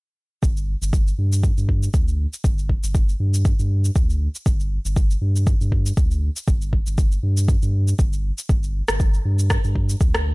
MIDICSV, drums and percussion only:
0, 0, Header, 1, 2, 480
1, 0, Start_track
1, 0, Tempo, 504202
1, 407, Time_signature, 4, 2, 24, 8
1, 9847, End_track
2, 0, Start_track
2, 0, Title_t, "Drums"
2, 407, Note_on_c, 9, 36, 108
2, 411, Note_on_c, 9, 82, 61
2, 502, Note_off_c, 9, 36, 0
2, 506, Note_off_c, 9, 82, 0
2, 543, Note_on_c, 9, 82, 35
2, 638, Note_off_c, 9, 82, 0
2, 784, Note_on_c, 9, 82, 75
2, 879, Note_off_c, 9, 82, 0
2, 886, Note_on_c, 9, 36, 100
2, 889, Note_on_c, 9, 82, 61
2, 981, Note_off_c, 9, 36, 0
2, 984, Note_off_c, 9, 82, 0
2, 1023, Note_on_c, 9, 82, 35
2, 1118, Note_off_c, 9, 82, 0
2, 1261, Note_on_c, 9, 82, 68
2, 1356, Note_off_c, 9, 82, 0
2, 1366, Note_on_c, 9, 36, 106
2, 1366, Note_on_c, 9, 82, 58
2, 1461, Note_off_c, 9, 36, 0
2, 1462, Note_off_c, 9, 82, 0
2, 1501, Note_on_c, 9, 82, 35
2, 1596, Note_off_c, 9, 82, 0
2, 1606, Note_on_c, 9, 36, 52
2, 1701, Note_off_c, 9, 36, 0
2, 1739, Note_on_c, 9, 82, 72
2, 1835, Note_off_c, 9, 82, 0
2, 1846, Note_on_c, 9, 36, 109
2, 1846, Note_on_c, 9, 82, 60
2, 1941, Note_off_c, 9, 36, 0
2, 1941, Note_off_c, 9, 82, 0
2, 1981, Note_on_c, 9, 82, 34
2, 2077, Note_off_c, 9, 82, 0
2, 2220, Note_on_c, 9, 82, 68
2, 2316, Note_off_c, 9, 82, 0
2, 2325, Note_on_c, 9, 36, 110
2, 2327, Note_on_c, 9, 82, 65
2, 2420, Note_off_c, 9, 36, 0
2, 2422, Note_off_c, 9, 82, 0
2, 2460, Note_on_c, 9, 82, 35
2, 2555, Note_off_c, 9, 82, 0
2, 2565, Note_on_c, 9, 36, 57
2, 2660, Note_off_c, 9, 36, 0
2, 2699, Note_on_c, 9, 82, 75
2, 2794, Note_off_c, 9, 82, 0
2, 2804, Note_on_c, 9, 82, 64
2, 2805, Note_on_c, 9, 36, 106
2, 2900, Note_off_c, 9, 36, 0
2, 2900, Note_off_c, 9, 82, 0
2, 2941, Note_on_c, 9, 82, 36
2, 3036, Note_off_c, 9, 82, 0
2, 3180, Note_on_c, 9, 82, 70
2, 3275, Note_off_c, 9, 82, 0
2, 3286, Note_on_c, 9, 36, 117
2, 3287, Note_on_c, 9, 82, 62
2, 3381, Note_off_c, 9, 36, 0
2, 3382, Note_off_c, 9, 82, 0
2, 3421, Note_on_c, 9, 82, 36
2, 3516, Note_off_c, 9, 82, 0
2, 3660, Note_on_c, 9, 82, 73
2, 3755, Note_off_c, 9, 82, 0
2, 3766, Note_on_c, 9, 36, 114
2, 3768, Note_on_c, 9, 82, 63
2, 3862, Note_off_c, 9, 36, 0
2, 3863, Note_off_c, 9, 82, 0
2, 3902, Note_on_c, 9, 82, 36
2, 3997, Note_off_c, 9, 82, 0
2, 4141, Note_on_c, 9, 82, 73
2, 4236, Note_off_c, 9, 82, 0
2, 4246, Note_on_c, 9, 36, 114
2, 4246, Note_on_c, 9, 82, 64
2, 4341, Note_off_c, 9, 36, 0
2, 4341, Note_off_c, 9, 82, 0
2, 4380, Note_on_c, 9, 82, 38
2, 4475, Note_off_c, 9, 82, 0
2, 4621, Note_on_c, 9, 82, 75
2, 4716, Note_off_c, 9, 82, 0
2, 4726, Note_on_c, 9, 36, 110
2, 4727, Note_on_c, 9, 82, 62
2, 4821, Note_off_c, 9, 36, 0
2, 4822, Note_off_c, 9, 82, 0
2, 4860, Note_on_c, 9, 82, 38
2, 4956, Note_off_c, 9, 82, 0
2, 5101, Note_on_c, 9, 82, 75
2, 5196, Note_off_c, 9, 82, 0
2, 5206, Note_on_c, 9, 36, 116
2, 5207, Note_on_c, 9, 82, 61
2, 5301, Note_off_c, 9, 36, 0
2, 5303, Note_off_c, 9, 82, 0
2, 5341, Note_on_c, 9, 82, 37
2, 5436, Note_off_c, 9, 82, 0
2, 5445, Note_on_c, 9, 36, 56
2, 5541, Note_off_c, 9, 36, 0
2, 5579, Note_on_c, 9, 82, 74
2, 5674, Note_off_c, 9, 82, 0
2, 5684, Note_on_c, 9, 82, 64
2, 5686, Note_on_c, 9, 36, 116
2, 5779, Note_off_c, 9, 82, 0
2, 5781, Note_off_c, 9, 36, 0
2, 5818, Note_on_c, 9, 82, 37
2, 5913, Note_off_c, 9, 82, 0
2, 6058, Note_on_c, 9, 82, 72
2, 6153, Note_off_c, 9, 82, 0
2, 6164, Note_on_c, 9, 82, 62
2, 6165, Note_on_c, 9, 36, 114
2, 6260, Note_off_c, 9, 82, 0
2, 6261, Note_off_c, 9, 36, 0
2, 6298, Note_on_c, 9, 82, 36
2, 6393, Note_off_c, 9, 82, 0
2, 6406, Note_on_c, 9, 36, 58
2, 6501, Note_off_c, 9, 36, 0
2, 6536, Note_on_c, 9, 82, 74
2, 6632, Note_off_c, 9, 82, 0
2, 6645, Note_on_c, 9, 36, 110
2, 6645, Note_on_c, 9, 82, 62
2, 6740, Note_off_c, 9, 36, 0
2, 6740, Note_off_c, 9, 82, 0
2, 6777, Note_on_c, 9, 82, 37
2, 6872, Note_off_c, 9, 82, 0
2, 7017, Note_on_c, 9, 82, 74
2, 7113, Note_off_c, 9, 82, 0
2, 7125, Note_on_c, 9, 36, 112
2, 7125, Note_on_c, 9, 82, 64
2, 7220, Note_off_c, 9, 36, 0
2, 7220, Note_off_c, 9, 82, 0
2, 7258, Note_on_c, 9, 82, 37
2, 7353, Note_off_c, 9, 82, 0
2, 7498, Note_on_c, 9, 82, 73
2, 7593, Note_off_c, 9, 82, 0
2, 7605, Note_on_c, 9, 36, 115
2, 7606, Note_on_c, 9, 82, 64
2, 7700, Note_off_c, 9, 36, 0
2, 7701, Note_off_c, 9, 82, 0
2, 7739, Note_on_c, 9, 82, 36
2, 7834, Note_off_c, 9, 82, 0
2, 7979, Note_on_c, 9, 82, 72
2, 8074, Note_off_c, 9, 82, 0
2, 8085, Note_on_c, 9, 82, 61
2, 8086, Note_on_c, 9, 36, 112
2, 8180, Note_off_c, 9, 82, 0
2, 8181, Note_off_c, 9, 36, 0
2, 8218, Note_on_c, 9, 82, 37
2, 8313, Note_off_c, 9, 82, 0
2, 8457, Note_on_c, 9, 37, 79
2, 8457, Note_on_c, 9, 82, 72
2, 8552, Note_off_c, 9, 37, 0
2, 8553, Note_off_c, 9, 82, 0
2, 8565, Note_on_c, 9, 82, 59
2, 8567, Note_on_c, 9, 36, 110
2, 8661, Note_off_c, 9, 82, 0
2, 8662, Note_off_c, 9, 36, 0
2, 8699, Note_on_c, 9, 82, 36
2, 8794, Note_off_c, 9, 82, 0
2, 8939, Note_on_c, 9, 82, 70
2, 9034, Note_off_c, 9, 82, 0
2, 9045, Note_on_c, 9, 37, 68
2, 9046, Note_on_c, 9, 82, 59
2, 9047, Note_on_c, 9, 36, 112
2, 9140, Note_off_c, 9, 37, 0
2, 9141, Note_off_c, 9, 82, 0
2, 9142, Note_off_c, 9, 36, 0
2, 9178, Note_on_c, 9, 82, 36
2, 9273, Note_off_c, 9, 82, 0
2, 9286, Note_on_c, 9, 36, 54
2, 9382, Note_off_c, 9, 36, 0
2, 9419, Note_on_c, 9, 82, 73
2, 9514, Note_off_c, 9, 82, 0
2, 9525, Note_on_c, 9, 82, 59
2, 9527, Note_on_c, 9, 36, 110
2, 9620, Note_off_c, 9, 82, 0
2, 9622, Note_off_c, 9, 36, 0
2, 9658, Note_on_c, 9, 37, 79
2, 9659, Note_on_c, 9, 82, 36
2, 9754, Note_off_c, 9, 37, 0
2, 9754, Note_off_c, 9, 82, 0
2, 9847, End_track
0, 0, End_of_file